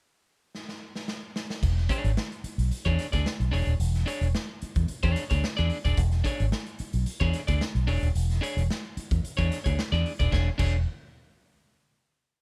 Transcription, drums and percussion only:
0.55 snare soft
0.69 snare medium
0.96 snare medium
1.08 snare medium
1.36 snare medium
1.50 snare medium
1.63 kick loud
1.63 crash medium
1.77 snare soft
1.89 kick medium
1.89 closed hi-hat medium
2.04 closed hi-hat soft
2.17 snare loud
2.32 closed hi-hat soft
2.44 closed hi-hat medium
2.59 closed hi-hat medium
2.71 closed hi-hat medium
2.86 kick medium
2.86 closed hi-hat soft
2.99 snare soft
2.99 closed hi-hat medium
3.13 kick medium
3.13 closed hi-hat medium
3.26 snare loud
3.40 closed hi-hat soft
3.53 open hi-hat medium
3.67 closed hi-hat soft
3.80 closed hi-hat medium
3.94 snare soft
3.94 closed hi-hat soft
4.07 closed hi-hat medium
4.22 closed hi-hat soft
4.35 snare loud
4.62 closed hi-hat medium
4.75 kick medium
4.75 closed hi-hat soft
4.88 closed hi-hat medium
5.03 kick medium
5.03 closed hi-hat soft
5.16 snare soft
5.16 closed hi-hat medium
5.30 kick medium
5.30 closed hi-hat medium
5.44 snare loud
5.58 closed hi-hat soft
5.70 open hi-hat medium
5.85 kick medium
5.85 closed hi-hat soft
5.97 kick loud
5.97 closed hi-hat medium
6.11 snare soft
6.11 closed hi-hat soft
6.25 kick medium
6.25 closed hi-hat medium
6.40 closed hi-hat soft
6.52 snare loud
6.66 closed hi-hat soft
6.79 closed hi-hat medium
6.93 closed hi-hat medium
7.06 closed hi-hat medium
7.20 kick medium
7.20 closed hi-hat soft
7.33 snare soft
7.33 closed hi-hat medium
7.48 kick medium
7.48 closed hi-hat medium
7.61 snare loud
7.75 closed hi-hat soft
7.88 open hi-hat medium
8.03 closed hi-hat medium
8.15 closed hi-hat medium
8.30 snare soft
8.30 closed hi-hat soft
8.43 closed hi-hat medium
8.58 closed hi-hat soft
8.71 snare loud
8.97 closed hi-hat medium
9.11 kick loud
9.11 closed hi-hat soft
9.25 closed hi-hat medium
9.38 kick medium
9.38 closed hi-hat soft
9.52 snare soft
9.52 closed hi-hat medium
9.66 kick medium
9.66 closed hi-hat medium
9.79 snare loud
9.94 closed hi-hat soft
10.06 open hi-hat medium
10.20 kick medium
10.20 closed hi-hat medium
10.32 kick loud
10.32 snare medium
10.59 kick loud
10.59 crash medium

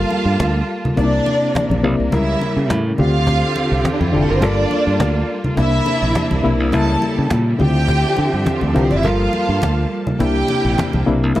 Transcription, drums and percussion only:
0.11 muted conga soft
0.40 cajon bass loud
0.40 cajon slap loud
0.40 high conga medium
0.68 cajon slap soft
0.85 low conga medium
0.97 cajon bass loud
1.26 muted conga medium
1.42 cajon slap soft
1.55 cajon bass loud
1.55 cajon slap loud
1.55 high conga medium
1.71 high conga medium
1.84 cajon slap soft
1.98 cajon slap soft
2.12 cajon bass loud
2.12 muted conga medium
2.41 muted conga medium
2.70 cajon bass loud
2.70 cajon slap loud
2.70 high conga medium
2.98 cajon slap soft
2.98 low conga medium
3.27 cajon bass loud
3.27 muted conga soft
3.56 muted conga medium
3.85 cajon bass loud
3.85 cajon slap loud
3.85 high conga medium
4.01 high conga medium
4.13 cajon slap soft
4.42 cajon bass loud
4.42 muted conga medium
4.71 muted conga medium
5.00 cajon bass loud
5.00 cajon slap loud
5.00 high conga medium
5.28 cajon slap soft
5.44 low conga medium
5.57 cajon bass loud
5.57 muted conga soft
5.86 muted conga medium
6.15 cajon bass loud
6.15 cajon slap loud
6.15 high conga medium
6.31 high conga medium
6.44 cajon slap soft
6.59 cajon slap soft
6.72 cajon bass loud
6.72 muted conga soft
7.02 muted conga medium
7.30 cajon bass loud
7.30 cajon slap loud
7.30 high conga medium
7.60 low conga medium
7.88 cajon bass loud
8.16 muted conga medium
8.46 cajon bass loud
8.46 cajon slap medium
8.46 high conga medium
8.61 high conga medium
8.76 cajon bass medium
8.91 cajon bass medium
8.91 high conga soft
9.03 cajon bass medium
9.03 muted conga soft
9.33 muted conga medium
9.62 cajon bass loud
9.62 cajon slap loud
9.62 high conga medium
9.91 cajon slap soft
10.07 low conga medium
10.20 cajon bass loud
10.48 muted conga medium
10.78 cajon bass loud
10.78 cajon slap loud
10.78 high conga medium
10.93 high conga medium
11.07 cajon slap soft
11.22 cajon slap soft
11.35 cajon bass loud
11.35 muted conga medium

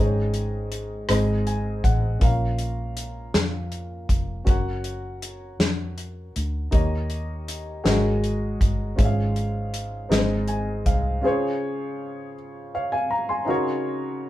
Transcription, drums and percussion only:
0.34 closed hi-hat soft
0.72 closed hi-hat medium
1.09 cross-stick loud
1.09 closed hi-hat medium
1.47 closed hi-hat soft
1.84 kick medium
1.84 closed hi-hat medium
2.21 kick medium
2.21 closed hi-hat medium
2.59 closed hi-hat soft
2.97 closed hi-hat medium
3.34 snare loud
3.34 closed hi-hat medium
3.72 closed hi-hat soft
4.09 kick medium
4.09 closed hi-hat medium
4.47 kick medium
4.47 closed hi-hat medium
4.84 closed hi-hat soft
5.22 closed hi-hat medium
5.60 snare loud
5.60 closed hi-hat medium
5.98 closed hi-hat soft
6.36 closed hi-hat medium
6.72 kick medium
6.72 closed hi-hat medium
7.10 closed hi-hat soft
7.48 closed hi-hat medium
7.86 snare loud
7.86 closed hi-hat medium
8.24 closed hi-hat soft
8.61 kick medium
8.61 closed hi-hat medium
8.99 kick medium
8.99 closed hi-hat medium
9.36 closed hi-hat soft
9.74 closed hi-hat medium
10.12 snare loud
10.12 closed hi-hat medium
10.47 closed hi-hat soft
10.86 kick medium
10.86 closed hi-hat medium

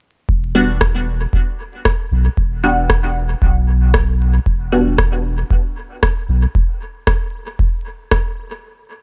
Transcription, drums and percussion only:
0.29 kick loud
0.81 kick loud
0.81 cross-stick medium
1.33 kick loud
1.85 kick loud
1.85 cross-stick medium
2.37 kick loud
2.90 kick loud
2.90 cross-stick medium
3.42 kick loud
3.94 kick loud
3.94 cross-stick medium
4.46 kick loud
4.98 kick loud
4.98 cross-stick medium
5.51 kick loud
6.03 kick loud
6.03 cross-stick medium
6.55 kick loud
7.07 kick loud
7.07 cross-stick medium
7.59 kick loud
8.11 kick loud
8.11 cross-stick medium

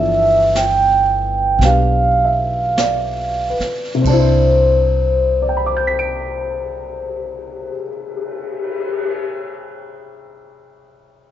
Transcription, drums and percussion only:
0.55 snare soft
0.55 hi-hat pedal soft
1.61 brush sweep soft
1.61 snare soft
2.78 snare soft
2.78 hi-hat pedal soft
3.60 snare soft
4.04 kick soft
4.04 ride soft
4.95 cymbal swell soft

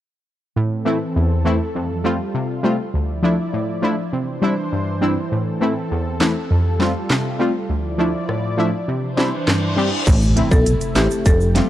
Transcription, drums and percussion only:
6.21 snare loud
6.21 clap medium
6.81 snare medium
7.10 snare loud
7.10 clap medium
8.29 cross-stick medium
9.18 snare medium
9.48 cross-stick medium
9.48 snare loud
9.48 clap medium
10.07 kick loud
10.07 closed hi-hat medium
10.07 crash loud
10.07 shaker medium
10.22 shaker soft
10.37 closed hi-hat medium
10.51 kick loud
10.51 shaker medium
10.66 closed hi-hat medium
10.66 shaker medium
10.81 closed hi-hat medium
10.81 shaker medium
10.96 snare loud
10.96 clap medium
10.96 closed hi-hat medium
10.96 shaker medium
11.11 shaker medium
11.26 kick loud
11.26 closed hi-hat medium
11.26 shaker medium
11.41 shaker medium
11.56 snare medium
11.56 closed hi-hat medium

